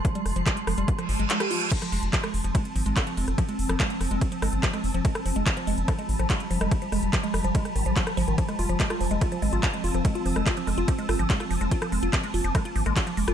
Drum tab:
CC |----------------|x---------------|----------------|----------------|
RD |----------------|x---x---x---x---|x---x---x---x---|x---x---x---x---|
HH |xxoxxxoxxxoxxxox|xxoxxxoxxxoxxxox|xxoxxxoxxxoxxxox|xxoxxxoxxxoxxxox|
CP |----x-------x---|----x-------x---|----x-------x---|----x-------x---|
SD |--r---r--r---r--|-r---r--r---r--r|---r--r---r--r--|-r--r---r--r---r|
BD |o---o---o-------|o---o---o---o---|o---o---o---o---|o---o---o---o---|

CC |----------------|----------------|----------------|----------------|
RD |x---x---x---x---|x---x---x---x---|x---x---x---x---|x---x---x---x---|
HH |xxoxxxoxxxoxxxox|xxoxxxoxxxoxxxox|xxoxxxoxxxoxxxox|xxoxxxoxxxoxxxox|
CP |----x-------x---|----x-------x---|----x-------x---|----x-------x---|
SD |--r---r--r---r--|-r---r--r---r--r|---r--r---r--r--|-r--r---r--r---r|
BD |o---o---o---o---|o---o---o---o---|o---o---o---o---|o---o---o---o---|